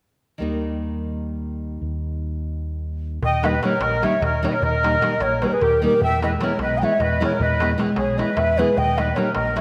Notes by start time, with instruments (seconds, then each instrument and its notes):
0.38 fingered electric bass D#2, nylon-string guitar D#3 G3 A#3 D#4
1.82 fingered electric bass D#2
3.23 fingered electric bass D#2, accordion D#5, ney G5, darbuka dum
3.34 darbuka tek
3.43 nylon-string guitar D#3 G3 A#3 D#4, accordion B4, ney D#5, darbuka tek
3.54 darbuka tek
3.63 nylon-string guitar D#3 G3 A#3 D#4, accordion A#4, ney C#5, darbuka tek
3.72 darbuka tek
3.80 fingered electric bass A#1, accordion A#4, ney D#5, darbuka tek
3.92 darbuka tek
4.02 nylon-string guitar D#3 G3 A#3 D#4, accordion C#5, ney E5, darbuka tek
4.21 fingered electric bass D#2, accordion A#4, ney D#5, darbuka tek, darbuka dum
4.34 darbuka tek
4.42 nylon-string guitar D#3 G3 A#3 D#4, accordion A#4, ney C#5, darbuka tek
4.48 accordion B4, ney D#5
4.52 accordion A#4, ney C#5
4.62 fingered electric bass D#2, accordion A#4, ney D#5, darbuka dum
4.74 darbuka tek
4.83 nylon-string guitar D#3 G3 A#3 D#4, darbuka tek
4.94 darbuka tek
5.01 nylon-string guitar D#3 G3 A#3 D#4, darbuka tek
5.12 darbuka tek
5.20 fingered electric bass A#1, accordion A#4, ney C#5, darbuka tek
5.32 darbuka tek
5.42 nylon-string guitar D#3 G3 A#3 D#4, accordion G#4, ney B4, darbuka tek
5.47 accordion A#4, ney C#5
5.52 accordion G#4, ney B4
5.61 fingered electric bass D#2, accordion G4, ney A#4, darbuka tek, darbuka dum
5.72 darbuka tek
5.82 nylon-string guitar D#3 G3 A#3 D#4, accordion G4, ney A#4
6.01 fingered electric bass E2, accordion E5, ney G5, darbuka dum
6.12 darbuka tek
6.22 nylon-string guitar E3 G#3 B3 E4, accordion B4, ney D#5, darbuka tek
6.32 darbuka tek
6.40 nylon-string guitar E3 G#3 B3 E4, accordion A#4, ney C#5, darbuka tek
6.50 darbuka tek
6.59 fingered electric bass B1, accordion B4, ney D#5, darbuka tek
6.70 darbuka tek
6.77 accordion D#5, ney G5
6.81 nylon-string guitar E3 G#3 B3 E4, accordion C#5, ney E5
6.99 fingered electric bass E2, accordion B4, ney D#5, darbuka tek, darbuka dum
7.11 darbuka tek
7.20 nylon-string guitar E3 G#3 B3 E4, accordion A#4, darbuka tek
7.24 ney C#5
7.40 fingered electric bass E2, accordion B4, ney D#5, darbuka dum
7.51 darbuka tek
7.60 nylon-string guitar E3 G#3 B3 E4, darbuka tek
7.70 darbuka tek
7.78 nylon-string guitar E3 G#3 B3 E4, darbuka tek
7.89 darbuka tek
7.96 fingered electric bass B1, accordion G#4, ney C#5, darbuka tek
8.08 darbuka tek
8.17 nylon-string guitar E3 G#3 B3 E4, accordion B4, ney D#5, darbuka tek
8.28 darbuka tek
8.36 fingered electric bass E2, accordion B4, ney E5, darbuka tek, darbuka dum
8.48 darbuka tek
8.58 nylon-string guitar E3 G#3 B3 E4, accordion G#4, ney B4, darbuka tek
8.69 darbuka tek
8.77 fingered electric bass D#2, accordion D#5, ney G5, darbuka dum
8.88 darbuka tek
8.97 nylon-string guitar D#3 G3 A#3 D#4, accordion B4, ney D#5, darbuka tek
9.07 darbuka tek
9.15 nylon-string guitar D#3 G3 A#3 D#4, accordion A#4, ney C#5, darbuka tek
9.25 darbuka tek
9.33 fingered electric bass A#1, accordion A#4, ney D#5, darbuka tek
9.46 darbuka tek
9.56 nylon-string guitar D#3 G3 A#3, accordion C#5, ney E5, darbuka tek